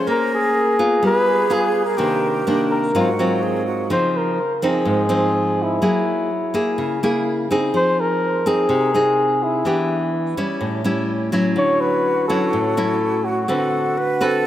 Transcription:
Already playing: C#4 G#4 C5
0.07 A#3 A#4
0.35 G#4
0.79 B3 F4
1.03 G3 G#4 B4
1.50 B3 F4 G#4
1.85 A#4
1.97 C3 D#3 A#3 D4 G4
2.47 D#3 A#3 D4
2.71 A#4
2.95 G#2 F#3 C4 F4 F#4
3.19 F#3 C4 F4
3.43 G#4
3.66 F#4
3.90 C#3 F3 C4 D#4 C5
4.17 A#4
4.56 A#4
4.62 F3 C4 D#4 G#4
4.85 G#2
5.09 F3 C4 D#4
5.62 E4
5.82 F#3 A#3 E4 G#4
6.54 A#3 E4 G#4
6.78 C#3
7.03 A#3 E4 G#4
7.51 C4 D#4 G#4
7.74 F3 C5
8.00 A#4
8.46 C4 D#4 G#4
8.69 C3
8.94 C4 D#4 G#4
9.43 E4
9.65 E3 B3 D4 G4
10.37 G3 C#4 E4
10.61 A2
10.84 G3 C#4 E4
11.32 F#3 C#4 E4
11.56 D3 F#4 C#5
11.81 B4
12.28 F#3 C#4 E4 A4
12.53 A2
12.77 F#3 C#4 E4
13.24 F#4
13.48 D3 C4 F#4 A4 B4
13.98 B4
14.21 C4 F#4 A4 B4

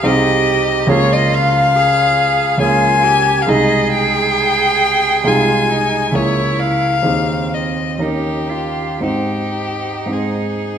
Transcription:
Already playing: C2 C4 D#4 G#4
0.03 C2 C4 D#4 G4 G#4 D#5
0.87 C#2 A#3 C#4 F4 G#4
0.91 C#5
1.12 D#5
1.34 F5
1.76 G#4
2.58 C#2 A#3 C#4 F4 G#4 G#5
3.03 G4
3.42 F5
3.47 C2 G#3 D#4 G#4 D#5
3.92 G5
5.24 C2 G#3 D#4 F4 G#4 G#5
5.71 D#4
6.12 C#2 A#3 E4 G#4 C#5
6.60 F5
7.03 D#2 C4 D#4 G#4
7.54 D#5
7.98 D#2 C#4 D#4 A#4
8.03 G4
8.51 F4
9.00 G#2 C4 D#4 G4 C5
10.06 G#2 C4 D#4 C5
10.13 G#4

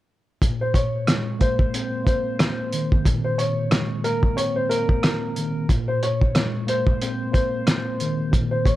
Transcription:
0.42 A#2, kick, closed hi-hat
0.61 C5
0.74 C#5, kick, closed hi-hat
1.07 G#3, cross-stick, snare, closed hi-hat
1.39 A#3 C5, kick, closed hi-hat
1.59 kick
1.74 C4, closed hi-hat
2.04 A#3 C5, kick, closed hi-hat
2.39 cross-stick, snare, closed hi-hat
2.73 D#3, closed hi-hat
2.92 kick
3.04 A#2, kick, closed hi-hat
3.24 C5
3.38 C#5, closed hi-hat
3.71 G#3, cross-stick, snare, closed hi-hat
4.04 A#3 A#4, closed hi-hat
4.23 kick
4.36 C4 C#5, closed hi-hat
4.56 C5
4.69 A#3 A#4, closed hi-hat
4.89 kick
5.03 cross-stick, snare, closed hi-hat
5.36 D#3, closed hi-hat
5.69 A#2, kick, closed hi-hat
5.88 C5
6.03 C#5, closed hi-hat
6.21 kick
6.35 G#3, cross-stick, snare, closed hi-hat
6.67 A#3 C5, closed hi-hat
6.87 kick
7.02 C4, closed hi-hat
7.32 A#3 C5, kick, closed hi-hat
7.67 cross-stick, snare, closed hi-hat
8.00 D#3, closed hi-hat
8.32 A#2, kick, closed hi-hat
8.51 C5
8.66 C#5, kick, closed hi-hat

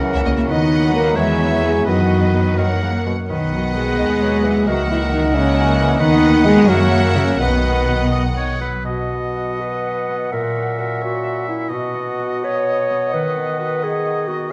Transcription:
Already playing: C#3 F#3 C#4 F#4 A#4 F#5
0.02 E3 F#3 E4
0.15 C#2 A#3 E5
0.25 C#2 F#3 A#3 C#4 D#5
0.36 C#2 A#3 E5
0.47 D#2 D#3 F#3 B3 D#4 B4 D#5 F#5
0.71 D#4
0.92 A#3 F#4 A#4 B4
1.16 E2 E3 G#3 B3 G#4 B4 C#5 E5
1.39 E4
1.62 G#3 E4 G#4 B4
1.86 F#2 D#3 F#3 B3 D#4 F#4 B4 D#5 F#5
2.11 B3
2.34 D#4 B4
2.57 F#2 D#3 A#3 A#4 C#5 F#5
2.83 C#3 A#3
3.06 B2 F#4 C#5
3.29 B1 B2 D#3 D#4 B4 D#5 F#5
3.52 F#3 B3 F#4
3.75 G#3 F#4 G#4
3.98 D#2 D#3 D#5
4.22 F#3 B3 C#5
4.44 E3 F#3 B4
4.66 C#2 C#3 D#3 F#3 A#3 F#4 A#4 D#5 E5 F#5
4.89 E3 A#3 E4
5.11 D#3 D#4 F#4
5.33 C#3 A#3 C#4 E5 F#5 G#5
5.55 F#3 A#3
5.77 E3 C#4
5.98 D#2 D#3 B3 D#4 B4 D#5 F#5
6.22 B3
6.45 G#3 F#4 G#4 D#5
6.68 F#2 C#3 F#3 A#3 F#4 A#4 C#5 E5 F#5
6.92 A#3
7.15 C#3 C#4 F#4 E5
7.38 B1 B2 D#3 B3 B4 D#5 F#5
7.64 B3
7.88 F#4
8.12 D#5
8.36 B3 C#5
8.60 F#3 B4
8.85 B2 F#4 D#5 F#5
9.10 B3
9.36 F#4
9.60 B4
9.85 D#5
10.09 B3
10.31 A#2 A#4 E5
10.55 C#4
10.78 F#4 A#4
11.01 F#4 C#5
11.23 E5
11.47 C#4 E4
11.69 B2 D#5 F#5
11.74 F#4
11.95 B3
12.19 F#4
12.44 B4 C#5
12.68 D#5
12.90 B3
13.13 D#3 B4
13.36 B3
13.59 F#4 B4
13.82 G#4 B4
14.05 D#5
14.27 B3 F#4

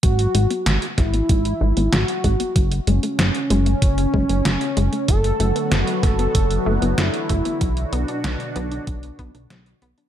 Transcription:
0.03 G#1 F#3 F#4, kick, closed hi-hat
0.19 closed hi-hat
0.35 G#1 G#3, closed hi-hat
0.50 B3, closed hi-hat
0.66 G#1 F#3, snare, closed hi-hat
0.82 closed hi-hat
0.98 G#1 G#3 E4, kick, snare, closed hi-hat
1.14 B3, closed hi-hat
1.29 G#1 F#3, kick, closed hi-hat
1.45 closed hi-hat
1.61 G#1 G#3
1.77 G#1 B3, closed hi-hat
1.93 G#1 F#3 F#4, snare, closed hi-hat
2.08 closed hi-hat
2.24 G#1 G#3, kick, closed hi-hat
2.40 B3, closed hi-hat
2.56 F#1 F#3, kick, closed hi-hat
2.72 closed hi-hat
2.87 F#1 G#3 C#4, closed hi-hat
3.03 A3, closed hi-hat
3.19 F#1 F#3, snare, closed hi-hat
3.35 closed hi-hat
3.50 F#1 G#3, closed hi-hat
3.66 A3, closed hi-hat
3.82 F#1 F#3, kick, closed hi-hat
3.98 closed hi-hat
4.14 F#1 G#3, kick
4.29 F#1 A3, closed hi-hat
4.45 F#1 F#3, snare, closed hi-hat
4.61 closed hi-hat
4.77 F#1 G#3, closed hi-hat
4.93 A3, closed hi-hat
5.08 F#1 D3 F#3 A3 B3 F#4 A4, kick, closed hi-hat
5.24 closed hi-hat
5.40 F#1 A3, closed hi-hat
5.56 B3, closed hi-hat
5.71 F#1 F#3, snare, closed hi-hat
5.87 closed hi-hat
6.03 F#1 A3 A4, kick, snare, closed hi-hat
6.19 B3, closed hi-hat
6.35 F#1 F#3, kick, closed hi-hat
6.51 closed hi-hat
6.66 F#1 A3
6.82 F#1 B3, closed hi-hat
6.98 F#1 F#3 E4, snare, closed hi-hat
7.14 closed hi-hat
7.29 F#1 A3, kick, closed hi-hat
7.45 B3, closed hi-hat
7.61 B1 B2 F#3 D4 F#4, kick, closed hi-hat
7.77 closed hi-hat
7.93 B1 B3 D4, closed hi-hat
8.08 D4, closed hi-hat
8.24 B1 F#3, snare, closed hi-hat
8.40 closed hi-hat
8.56 B1 B3, closed hi-hat
8.72 D4, closed hi-hat
8.87 B1 F#3, kick, closed hi-hat
9.03 closed hi-hat
9.19 B1 B3, kick, closed hi-hat
9.35 B1 D4, closed hi-hat
9.50 B1 F#3, snare, closed hi-hat
9.66 closed hi-hat
9.82 B1 B3, closed hi-hat
9.98 D4, closed hi-hat

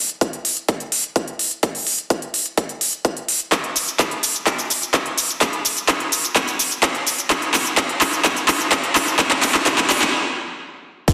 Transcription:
0.10 closed hi-hat
0.21 kick, closed hi-hat
0.33 closed hi-hat
0.45 open hi-hat
0.57 closed hi-hat
0.68 kick, closed hi-hat
0.80 closed hi-hat
0.92 open hi-hat
1.04 closed hi-hat
1.16 kick, closed hi-hat
1.28 closed hi-hat
1.39 open hi-hat
1.51 closed hi-hat
1.63 kick, closed hi-hat
1.75 open hi-hat
1.87 open hi-hat
1.99 closed hi-hat
2.10 kick, closed hi-hat
2.22 closed hi-hat
2.34 open hi-hat
2.46 closed hi-hat
2.58 kick, closed hi-hat
2.69 closed hi-hat
2.81 open hi-hat
2.93 closed hi-hat
3.05 kick, closed hi-hat
3.17 closed hi-hat
3.28 open hi-hat
3.40 closed hi-hat
3.52 kick, clap, closed hi-hat, shaker
3.64 closed hi-hat
3.76 open hi-hat, shaker
3.88 closed hi-hat, shaker
3.99 kick, clap, closed hi-hat, shaker
4.11 closed hi-hat
4.23 open hi-hat, shaker
4.35 closed hi-hat, shaker
4.46 kick, clap, closed hi-hat, shaker
4.58 closed hi-hat, shaker
4.70 open hi-hat, shaker
4.82 closed hi-hat, shaker
4.94 kick, clap, closed hi-hat, shaker
5.06 closed hi-hat
5.18 open hi-hat, shaker
5.29 closed hi-hat, shaker
5.41 kick, clap, closed hi-hat, shaker
5.53 closed hi-hat
5.65 open hi-hat, shaker
5.77 closed hi-hat, shaker
5.88 kick, clap, closed hi-hat, shaker
6.00 closed hi-hat
6.12 open hi-hat, shaker
6.24 closed hi-hat, shaker
6.36 kick, clap, closed hi-hat, shaker
6.48 closed hi-hat, shaker
6.59 open hi-hat, shaker
6.71 closed hi-hat, shaker
6.83 kick, clap, closed hi-hat, shaker
6.95 closed hi-hat
7.07 open hi-hat, shaker
7.18 closed hi-hat, shaker
7.30 kick, clap, closed hi-hat, shaker
7.42 closed hi-hat
7.54 clap, open hi-hat, shaker
7.66 closed hi-hat, shaker
7.77 kick, clap, closed hi-hat, shaker
7.89 closed hi-hat
8.01 clap, open hi-hat, shaker
8.13 closed hi-hat, shaker
8.24 kick, clap, closed hi-hat, shaker
8.36 closed hi-hat, shaker
8.48 clap, open hi-hat, shaker
8.60 closed hi-hat, shaker
8.72 kick, clap, closed hi-hat, shaker
8.84 closed hi-hat
8.95 clap, open hi-hat, shaker
9.07 closed hi-hat, shaker
9.19 kick, clap, closed hi-hat, shaker
9.31 clap, closed hi-hat
9.43 clap, open hi-hat, shaker
9.54 clap, closed hi-hat, shaker
9.66 kick, clap, closed hi-hat, shaker
9.78 clap, closed hi-hat, shaker
9.90 clap, open hi-hat, shaker
10.02 clap, shaker
11.08 E1, kick, closed hi-hat, crash, shaker

